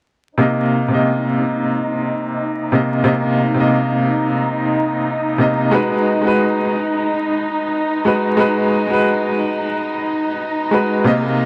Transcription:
0.38 upright piano C3 A#3 D#5, string section D#4, synth texture A#5
0.88 upright piano C3 A#3
0.94 upright piano D#5
2.72 upright piano C3 A#3 D#5
3.04 upright piano C3 A#3 D#5
3.54 upright piano C3 A#3
3.60 upright piano D#5
5.38 upright piano C3 A#3 D#5
5.71 upright piano G#3 F#4 B4
6.21 upright piano G#3 F#4
6.27 upright piano B4
8.05 upright piano G#3 F#4 B4
8.37 upright piano G#3 F#4 B4
8.87 upright piano G#3 F#4
8.93 upright piano B4
10.71 upright piano G#3 F#4 B4
11.04 upright piano C3 A#3 D#5, harp A#3, string section D#4

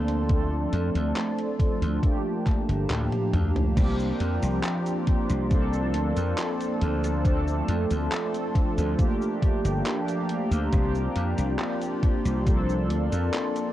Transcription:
Already playing: slap bass D2, analog polysynth F3 A#3 C4 D4 A4, ambient pad A#3 D5 A5 C6
0.08 closed hi-hat
0.28 analog polysynth F3 A3 C4 D4 A4, ambient pad F4, kick, closed hi-hat
0.73 slap bass F2, closed hi-hat
0.95 slap bass D2, closed hi-hat
1.16 clap, closed hi-hat
1.39 closed hi-hat
1.60 kick, closed hi-hat
1.82 slap bass D2, closed hi-hat
2.02 analog polysynth F3 A3 A#3 D4 G4, ambient pad G4 F5 A5 A#5, kick, closed hi-hat
2.47 kick, clap, closed hi-hat
2.69 slap bass G1, closed hi-hat
2.90 slap bass D2, clap, closed hi-hat, high tom
3.13 closed hi-hat, high tom
3.34 slap bass D2, closed hi-hat, mid tom
3.56 closed hi-hat, mid tom
3.76 slap bass C2, analog polysynth F3 A#3 C4 D4 G4, ambient pad F4 D5 A#5 C6, kick, closed hi-hat, crash, cabasa
4.00 cabasa
4.20 slap bass F2, closed hi-hat
4.43 slap bass C2, closed hi-hat, cabasa
4.64 clap, closed hi-hat, cabasa
4.86 closed hi-hat, cabasa
5.07 kick, closed hi-hat
5.30 slap bass C2, closed hi-hat, cabasa
5.50 analog polysynth F3 A#3 C4 D4 A4, ambient pad A#3 A5, kick, closed hi-hat, cabasa
5.73 cabasa
5.94 slap bass D2, closed hi-hat
6.17 slap bass F2, closed hi-hat, cabasa
6.38 clap, closed hi-hat, cabasa
6.61 closed hi-hat, cabasa
6.82 slap bass D2, closed hi-hat
7.04 closed hi-hat, cabasa
7.23 analog polysynth F3 A3 C4 D4 A4, ambient pad F4 C6, kick, closed hi-hat, cabasa
7.48 cabasa
7.69 slap bass F2, closed hi-hat
7.91 slap bass D2, closed hi-hat, cabasa
8.12 clap, closed hi-hat, cabasa
8.34 closed hi-hat, cabasa
8.55 kick, closed hi-hat
8.78 slap bass D2, closed hi-hat, cabasa
8.97 analog polysynth F3 A3 A#3 D4 G4, ambient pad G4 F5 A5 A#5, kick, closed hi-hat, cabasa
9.21 cabasa
9.42 kick, closed hi-hat
9.65 slap bass G1, closed hi-hat, cabasa
9.86 clap, closed hi-hat, cabasa
10.08 closed hi-hat, cabasa
10.29 closed hi-hat
10.51 slap bass D2, closed hi-hat, cabasa
10.71 slap bass C2, analog polysynth F3 A#3 C4 D4 G4, ambient pad F4 D5 C6, kick, closed hi-hat, cabasa
10.95 cabasa
11.16 slap bass F2, closed hi-hat
11.38 slap bass C2, closed hi-hat, cabasa
11.59 clap, closed hi-hat, cabasa
11.82 closed hi-hat, cabasa
12.03 kick, closed hi-hat
12.25 slap bass C2, closed hi-hat, cabasa
12.45 analog polysynth F3 A#3 C4 D4 A4, ambient pad A#3 D5 A5, kick, closed hi-hat, cabasa
12.69 cabasa
12.90 slap bass D2, closed hi-hat
13.12 slap bass F2, closed hi-hat, cabasa
13.34 clap, closed hi-hat, cabasa
13.56 closed hi-hat, cabasa

